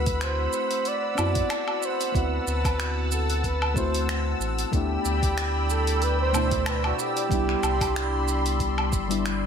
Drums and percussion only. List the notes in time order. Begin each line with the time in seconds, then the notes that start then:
0.06 kick, open hi-hat, shaker
0.21 finger snap, open hi-hat, shaker
0.53 shaker
0.71 open hi-hat, shaker
0.85 open hi-hat, shaker
1.18 low woodblock, shaker
1.35 kick, open hi-hat, shaker
1.50 finger snap, open hi-hat, low woodblock, shaker
1.68 low woodblock
1.83 shaker
2.01 open hi-hat, shaker
2.15 kick, open hi-hat, shaker
2.48 shaker
2.65 kick, open hi-hat, low woodblock, shaker
2.80 finger snap, open hi-hat, shaker
3.12 shaker
3.30 open hi-hat, shaker
3.44 kick, open hi-hat, shaker
3.62 low woodblock
3.76 kick, shaker
3.95 open hi-hat, shaker
4.09 finger snap, open hi-hat, shaker
4.41 shaker
4.59 open hi-hat, shaker
4.73 kick, open hi-hat, shaker
5.05 shaker
5.23 kick, open hi-hat, shaker
5.38 finger snap, open hi-hat, shaker
5.70 shaker
5.87 open hi-hat, shaker
6.02 open hi-hat, shaker
6.34 low woodblock, shaker
6.51 kick, open hi-hat, shaker
6.66 finger snap, open hi-hat, low woodblock, shaker
6.84 low woodblock
6.99 shaker
7.17 open hi-hat, shaker
7.31 kick, open hi-hat, shaker
7.49 finger snap
7.63 low woodblock, shaker
7.81 kick, open hi-hat, low woodblock, shaker
7.96 finger snap, open hi-hat, shaker
8.28 shaker
8.46 open hi-hat, shaker
8.60 kick, open hi-hat, shaker
8.78 low woodblock
8.92 kick, shaker
9.11 open hi-hat, shaker
9.26 finger snap, open hi-hat, shaker